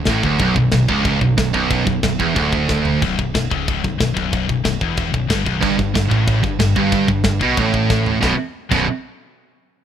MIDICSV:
0, 0, Header, 1, 4, 480
1, 0, Start_track
1, 0, Key_signature, 2, "minor"
1, 0, Tempo, 326264
1, 591, Time_signature, 4, 2, 24, 8
1, 14481, End_track
2, 0, Start_track
2, 0, Title_t, "Distorted electric guitar"
2, 0, Program_c, 0, 30
2, 91, Note_on_c, 0, 45, 104
2, 331, Note_off_c, 0, 45, 0
2, 337, Note_on_c, 0, 38, 112
2, 577, Note_off_c, 0, 38, 0
2, 596, Note_on_c, 0, 35, 113
2, 805, Note_off_c, 0, 35, 0
2, 823, Note_on_c, 0, 35, 79
2, 1019, Note_off_c, 0, 35, 0
2, 1059, Note_on_c, 0, 35, 79
2, 1257, Note_off_c, 0, 35, 0
2, 1300, Note_on_c, 0, 37, 98
2, 1777, Note_off_c, 0, 37, 0
2, 1799, Note_on_c, 0, 35, 74
2, 1986, Note_off_c, 0, 35, 0
2, 2025, Note_on_c, 0, 35, 68
2, 2219, Note_off_c, 0, 35, 0
2, 2263, Note_on_c, 0, 35, 101
2, 2725, Note_off_c, 0, 35, 0
2, 2743, Note_on_c, 0, 35, 86
2, 2937, Note_off_c, 0, 35, 0
2, 3009, Note_on_c, 0, 35, 81
2, 3190, Note_off_c, 0, 35, 0
2, 3231, Note_on_c, 0, 40, 108
2, 3459, Note_off_c, 0, 40, 0
2, 3465, Note_on_c, 0, 38, 116
2, 4418, Note_off_c, 0, 38, 0
2, 4449, Note_on_c, 0, 35, 110
2, 4670, Note_off_c, 0, 35, 0
2, 4692, Note_on_c, 0, 35, 81
2, 4871, Note_off_c, 0, 35, 0
2, 4914, Note_on_c, 0, 35, 81
2, 5153, Note_off_c, 0, 35, 0
2, 5153, Note_on_c, 0, 37, 104
2, 5622, Note_off_c, 0, 37, 0
2, 5640, Note_on_c, 0, 35, 67
2, 5824, Note_off_c, 0, 35, 0
2, 5862, Note_on_c, 0, 35, 77
2, 6055, Note_off_c, 0, 35, 0
2, 6092, Note_on_c, 0, 35, 109
2, 6566, Note_off_c, 0, 35, 0
2, 6584, Note_on_c, 0, 35, 74
2, 6776, Note_off_c, 0, 35, 0
2, 6828, Note_on_c, 0, 35, 87
2, 7018, Note_off_c, 0, 35, 0
2, 7079, Note_on_c, 0, 40, 105
2, 7545, Note_off_c, 0, 40, 0
2, 7553, Note_on_c, 0, 35, 71
2, 7741, Note_off_c, 0, 35, 0
2, 7774, Note_on_c, 0, 43, 110
2, 8012, Note_off_c, 0, 43, 0
2, 8018, Note_on_c, 0, 35, 104
2, 8241, Note_off_c, 0, 35, 0
2, 8247, Note_on_c, 0, 43, 101
2, 8472, Note_off_c, 0, 43, 0
2, 8490, Note_on_c, 0, 43, 78
2, 8689, Note_off_c, 0, 43, 0
2, 8739, Note_on_c, 0, 43, 78
2, 8934, Note_off_c, 0, 43, 0
2, 8953, Note_on_c, 0, 45, 96
2, 9438, Note_off_c, 0, 45, 0
2, 9444, Note_on_c, 0, 43, 71
2, 9647, Note_off_c, 0, 43, 0
2, 9707, Note_on_c, 0, 43, 71
2, 9898, Note_off_c, 0, 43, 0
2, 9937, Note_on_c, 0, 43, 102
2, 10391, Note_off_c, 0, 43, 0
2, 10409, Note_on_c, 0, 43, 85
2, 10609, Note_off_c, 0, 43, 0
2, 10659, Note_on_c, 0, 43, 72
2, 10855, Note_off_c, 0, 43, 0
2, 10884, Note_on_c, 0, 47, 108
2, 11123, Note_on_c, 0, 45, 110
2, 11128, Note_off_c, 0, 47, 0
2, 12060, Note_off_c, 0, 45, 0
2, 12066, Note_on_c, 0, 35, 95
2, 12075, Note_on_c, 0, 42, 106
2, 12091, Note_on_c, 0, 47, 113
2, 12231, Note_off_c, 0, 35, 0
2, 12236, Note_off_c, 0, 42, 0
2, 12244, Note_off_c, 0, 47, 0
2, 12792, Note_on_c, 0, 35, 91
2, 12808, Note_on_c, 0, 42, 107
2, 12819, Note_on_c, 0, 47, 107
2, 13003, Note_off_c, 0, 35, 0
2, 13011, Note_off_c, 0, 42, 0
2, 13016, Note_off_c, 0, 47, 0
2, 14481, End_track
3, 0, Start_track
3, 0, Title_t, "Picked electric bass"
3, 0, Program_c, 1, 34
3, 106, Note_on_c, 1, 33, 103
3, 332, Note_off_c, 1, 33, 0
3, 342, Note_on_c, 1, 26, 101
3, 569, Note_off_c, 1, 26, 0
3, 577, Note_on_c, 1, 23, 108
3, 807, Note_off_c, 1, 23, 0
3, 829, Note_on_c, 1, 23, 80
3, 1049, Note_off_c, 1, 23, 0
3, 1058, Note_on_c, 1, 23, 83
3, 1287, Note_off_c, 1, 23, 0
3, 1301, Note_on_c, 1, 25, 95
3, 1751, Note_off_c, 1, 25, 0
3, 1789, Note_on_c, 1, 23, 96
3, 2012, Note_off_c, 1, 23, 0
3, 2040, Note_on_c, 1, 23, 81
3, 2258, Note_off_c, 1, 23, 0
3, 2264, Note_on_c, 1, 23, 97
3, 2712, Note_off_c, 1, 23, 0
3, 2754, Note_on_c, 1, 23, 84
3, 2974, Note_off_c, 1, 23, 0
3, 2996, Note_on_c, 1, 23, 81
3, 3215, Note_off_c, 1, 23, 0
3, 3239, Note_on_c, 1, 28, 99
3, 3457, Note_off_c, 1, 28, 0
3, 3481, Note_on_c, 1, 26, 100
3, 4374, Note_off_c, 1, 26, 0
3, 4452, Note_on_c, 1, 23, 97
3, 4663, Note_off_c, 1, 23, 0
3, 4693, Note_on_c, 1, 23, 89
3, 4903, Note_off_c, 1, 23, 0
3, 4934, Note_on_c, 1, 23, 74
3, 5143, Note_off_c, 1, 23, 0
3, 5178, Note_on_c, 1, 25, 93
3, 5609, Note_off_c, 1, 25, 0
3, 5657, Note_on_c, 1, 23, 87
3, 5865, Note_off_c, 1, 23, 0
3, 5894, Note_on_c, 1, 23, 86
3, 6103, Note_off_c, 1, 23, 0
3, 6128, Note_on_c, 1, 23, 101
3, 6563, Note_off_c, 1, 23, 0
3, 6612, Note_on_c, 1, 23, 84
3, 6822, Note_off_c, 1, 23, 0
3, 6841, Note_on_c, 1, 23, 81
3, 7056, Note_off_c, 1, 23, 0
3, 7086, Note_on_c, 1, 28, 98
3, 7522, Note_off_c, 1, 28, 0
3, 7564, Note_on_c, 1, 23, 101
3, 7778, Note_off_c, 1, 23, 0
3, 7790, Note_on_c, 1, 31, 98
3, 8011, Note_off_c, 1, 31, 0
3, 8039, Note_on_c, 1, 23, 102
3, 8256, Note_off_c, 1, 23, 0
3, 8287, Note_on_c, 1, 31, 99
3, 8500, Note_off_c, 1, 31, 0
3, 8524, Note_on_c, 1, 31, 95
3, 8738, Note_off_c, 1, 31, 0
3, 8752, Note_on_c, 1, 31, 79
3, 8972, Note_off_c, 1, 31, 0
3, 8993, Note_on_c, 1, 33, 98
3, 9436, Note_off_c, 1, 33, 0
3, 9469, Note_on_c, 1, 31, 94
3, 9690, Note_off_c, 1, 31, 0
3, 9698, Note_on_c, 1, 31, 80
3, 9925, Note_off_c, 1, 31, 0
3, 9950, Note_on_c, 1, 31, 101
3, 10395, Note_off_c, 1, 31, 0
3, 10415, Note_on_c, 1, 31, 89
3, 10643, Note_off_c, 1, 31, 0
3, 10663, Note_on_c, 1, 31, 74
3, 10888, Note_off_c, 1, 31, 0
3, 10900, Note_on_c, 1, 35, 97
3, 11126, Note_off_c, 1, 35, 0
3, 11148, Note_on_c, 1, 33, 89
3, 12050, Note_off_c, 1, 33, 0
3, 12116, Note_on_c, 1, 23, 104
3, 12247, Note_off_c, 1, 23, 0
3, 12828, Note_on_c, 1, 23, 98
3, 13052, Note_off_c, 1, 23, 0
3, 14481, End_track
4, 0, Start_track
4, 0, Title_t, "Drums"
4, 78, Note_on_c, 9, 52, 73
4, 80, Note_on_c, 9, 38, 127
4, 101, Note_on_c, 9, 36, 123
4, 226, Note_off_c, 9, 52, 0
4, 227, Note_off_c, 9, 38, 0
4, 248, Note_off_c, 9, 36, 0
4, 344, Note_on_c, 9, 36, 100
4, 491, Note_off_c, 9, 36, 0
4, 565, Note_on_c, 9, 52, 67
4, 582, Note_on_c, 9, 36, 124
4, 712, Note_off_c, 9, 52, 0
4, 729, Note_off_c, 9, 36, 0
4, 822, Note_on_c, 9, 36, 92
4, 969, Note_off_c, 9, 36, 0
4, 1051, Note_on_c, 9, 52, 65
4, 1053, Note_on_c, 9, 38, 114
4, 1061, Note_on_c, 9, 36, 110
4, 1198, Note_off_c, 9, 52, 0
4, 1200, Note_off_c, 9, 38, 0
4, 1208, Note_off_c, 9, 36, 0
4, 1303, Note_on_c, 9, 36, 89
4, 1450, Note_off_c, 9, 36, 0
4, 1545, Note_on_c, 9, 52, 60
4, 1546, Note_on_c, 9, 36, 122
4, 1692, Note_off_c, 9, 52, 0
4, 1693, Note_off_c, 9, 36, 0
4, 1784, Note_on_c, 9, 36, 79
4, 1931, Note_off_c, 9, 36, 0
4, 2026, Note_on_c, 9, 52, 69
4, 2027, Note_on_c, 9, 38, 119
4, 2028, Note_on_c, 9, 36, 120
4, 2173, Note_off_c, 9, 52, 0
4, 2174, Note_off_c, 9, 38, 0
4, 2175, Note_off_c, 9, 36, 0
4, 2269, Note_on_c, 9, 36, 86
4, 2416, Note_off_c, 9, 36, 0
4, 2507, Note_on_c, 9, 52, 66
4, 2510, Note_on_c, 9, 36, 117
4, 2654, Note_off_c, 9, 52, 0
4, 2657, Note_off_c, 9, 36, 0
4, 2749, Note_on_c, 9, 36, 95
4, 2896, Note_off_c, 9, 36, 0
4, 2986, Note_on_c, 9, 52, 67
4, 2987, Note_on_c, 9, 38, 117
4, 2990, Note_on_c, 9, 36, 103
4, 3133, Note_off_c, 9, 52, 0
4, 3134, Note_off_c, 9, 38, 0
4, 3137, Note_off_c, 9, 36, 0
4, 3233, Note_on_c, 9, 36, 90
4, 3380, Note_off_c, 9, 36, 0
4, 3475, Note_on_c, 9, 36, 110
4, 3477, Note_on_c, 9, 52, 65
4, 3622, Note_off_c, 9, 36, 0
4, 3624, Note_off_c, 9, 52, 0
4, 3716, Note_on_c, 9, 36, 91
4, 3863, Note_off_c, 9, 36, 0
4, 3958, Note_on_c, 9, 38, 71
4, 3960, Note_on_c, 9, 36, 122
4, 4105, Note_off_c, 9, 38, 0
4, 4108, Note_off_c, 9, 36, 0
4, 4195, Note_on_c, 9, 43, 97
4, 4343, Note_off_c, 9, 43, 0
4, 4446, Note_on_c, 9, 36, 109
4, 4446, Note_on_c, 9, 52, 65
4, 4593, Note_off_c, 9, 36, 0
4, 4593, Note_off_c, 9, 52, 0
4, 4690, Note_on_c, 9, 36, 93
4, 4838, Note_off_c, 9, 36, 0
4, 4925, Note_on_c, 9, 52, 68
4, 4927, Note_on_c, 9, 38, 111
4, 4930, Note_on_c, 9, 36, 114
4, 5073, Note_off_c, 9, 52, 0
4, 5074, Note_off_c, 9, 38, 0
4, 5077, Note_off_c, 9, 36, 0
4, 5170, Note_on_c, 9, 36, 99
4, 5318, Note_off_c, 9, 36, 0
4, 5416, Note_on_c, 9, 36, 114
4, 5424, Note_on_c, 9, 52, 65
4, 5563, Note_off_c, 9, 36, 0
4, 5571, Note_off_c, 9, 52, 0
4, 5655, Note_on_c, 9, 36, 87
4, 5802, Note_off_c, 9, 36, 0
4, 5889, Note_on_c, 9, 52, 68
4, 5890, Note_on_c, 9, 38, 125
4, 5892, Note_on_c, 9, 36, 127
4, 6036, Note_off_c, 9, 52, 0
4, 6037, Note_off_c, 9, 38, 0
4, 6040, Note_off_c, 9, 36, 0
4, 6131, Note_on_c, 9, 36, 94
4, 6278, Note_off_c, 9, 36, 0
4, 6362, Note_on_c, 9, 52, 63
4, 6371, Note_on_c, 9, 36, 127
4, 6509, Note_off_c, 9, 52, 0
4, 6518, Note_off_c, 9, 36, 0
4, 6610, Note_on_c, 9, 36, 86
4, 6757, Note_off_c, 9, 36, 0
4, 6839, Note_on_c, 9, 52, 64
4, 6841, Note_on_c, 9, 38, 107
4, 6843, Note_on_c, 9, 36, 113
4, 6986, Note_off_c, 9, 52, 0
4, 6988, Note_off_c, 9, 38, 0
4, 6990, Note_off_c, 9, 36, 0
4, 7080, Note_on_c, 9, 36, 89
4, 7227, Note_off_c, 9, 36, 0
4, 7313, Note_on_c, 9, 52, 69
4, 7321, Note_on_c, 9, 36, 108
4, 7460, Note_off_c, 9, 52, 0
4, 7468, Note_off_c, 9, 36, 0
4, 7562, Note_on_c, 9, 36, 97
4, 7709, Note_off_c, 9, 36, 0
4, 7799, Note_on_c, 9, 36, 123
4, 7802, Note_on_c, 9, 52, 73
4, 7804, Note_on_c, 9, 38, 127
4, 7946, Note_off_c, 9, 36, 0
4, 7949, Note_off_c, 9, 52, 0
4, 7951, Note_off_c, 9, 38, 0
4, 8038, Note_on_c, 9, 36, 91
4, 8186, Note_off_c, 9, 36, 0
4, 8277, Note_on_c, 9, 36, 106
4, 8280, Note_on_c, 9, 52, 72
4, 8424, Note_off_c, 9, 36, 0
4, 8427, Note_off_c, 9, 52, 0
4, 8519, Note_on_c, 9, 36, 95
4, 8666, Note_off_c, 9, 36, 0
4, 8759, Note_on_c, 9, 36, 115
4, 8762, Note_on_c, 9, 52, 71
4, 8764, Note_on_c, 9, 38, 123
4, 8907, Note_off_c, 9, 36, 0
4, 8909, Note_off_c, 9, 52, 0
4, 8911, Note_off_c, 9, 38, 0
4, 8994, Note_on_c, 9, 36, 88
4, 9141, Note_off_c, 9, 36, 0
4, 9233, Note_on_c, 9, 36, 121
4, 9242, Note_on_c, 9, 52, 68
4, 9380, Note_off_c, 9, 36, 0
4, 9389, Note_off_c, 9, 52, 0
4, 9470, Note_on_c, 9, 36, 94
4, 9617, Note_off_c, 9, 36, 0
4, 9709, Note_on_c, 9, 36, 127
4, 9712, Note_on_c, 9, 52, 69
4, 9713, Note_on_c, 9, 38, 127
4, 9856, Note_off_c, 9, 36, 0
4, 9859, Note_off_c, 9, 52, 0
4, 9860, Note_off_c, 9, 38, 0
4, 9946, Note_on_c, 9, 36, 92
4, 10093, Note_off_c, 9, 36, 0
4, 10184, Note_on_c, 9, 36, 114
4, 10186, Note_on_c, 9, 52, 61
4, 10332, Note_off_c, 9, 36, 0
4, 10333, Note_off_c, 9, 52, 0
4, 10421, Note_on_c, 9, 36, 92
4, 10568, Note_off_c, 9, 36, 0
4, 10647, Note_on_c, 9, 52, 62
4, 10649, Note_on_c, 9, 38, 111
4, 10659, Note_on_c, 9, 36, 114
4, 10794, Note_off_c, 9, 52, 0
4, 10796, Note_off_c, 9, 38, 0
4, 10806, Note_off_c, 9, 36, 0
4, 10900, Note_on_c, 9, 36, 96
4, 11047, Note_off_c, 9, 36, 0
4, 11137, Note_on_c, 9, 52, 67
4, 11142, Note_on_c, 9, 36, 117
4, 11284, Note_off_c, 9, 52, 0
4, 11290, Note_off_c, 9, 36, 0
4, 11385, Note_on_c, 9, 36, 84
4, 11532, Note_off_c, 9, 36, 0
4, 11624, Note_on_c, 9, 36, 127
4, 11624, Note_on_c, 9, 38, 74
4, 11771, Note_off_c, 9, 36, 0
4, 11771, Note_off_c, 9, 38, 0
4, 11863, Note_on_c, 9, 43, 99
4, 12010, Note_off_c, 9, 43, 0
4, 12101, Note_on_c, 9, 38, 93
4, 12105, Note_on_c, 9, 36, 103
4, 12248, Note_off_c, 9, 38, 0
4, 12252, Note_off_c, 9, 36, 0
4, 12822, Note_on_c, 9, 36, 111
4, 12826, Note_on_c, 9, 49, 89
4, 12969, Note_off_c, 9, 36, 0
4, 12973, Note_off_c, 9, 49, 0
4, 14481, End_track
0, 0, End_of_file